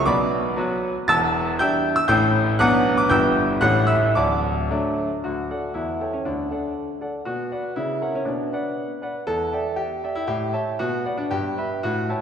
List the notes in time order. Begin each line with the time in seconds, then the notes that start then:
0.05 B1 B2 D5 B5 D6
0.56 F#3 B3 F#4
1.08 E1 E2 A5 E6 A6
1.59 G3 D4 E4 G5 E6 G6
1.96 E6
2.08 A1 A2 A3 C#4 E4 G5 E6 G6
2.59 B1 B2 F#3 B3 D4 F#5 D6 F#6
2.97 D6
3.10 G1 G2 E3 B3 E4 G5 E6 G6
3.61 A1 A2 G3 A3 C#4 F#5 F#6
3.87 E5 E6
4.15 D1 D2 D5 A5 D6
4.70 F#3 A3 D4
5.24 D2 F#4
5.50 A4 D5 F#5
5.74 E2 E4
6.00 A4 C#5 G5
6.13 C#4
6.25 D2 D4
6.51 A4 D5 F#5
7.01 A4 D5 F#5
7.25 B2 F#4
7.52 B4 D5 F#5
7.76 C#3 E4
8.01 A#4 C#5 F#5
8.15 C#4
8.25 B2 D4
8.53 B4 D5 F#5
9.02 B4 D5 F#5
9.27 E2 A4
9.52 D5 E5 G5
9.76 G4
10.04 D5 E5 G5
10.15 E4
10.27 A2 G4
10.53 C#5 E5 A5
10.79 B2 F#4
11.05 B4 D5 F#5
11.18 D4
11.31 G2 G4
11.57 B4 E5 B5
11.83 A2 F#4
12.09 E4 C#5 G5 A5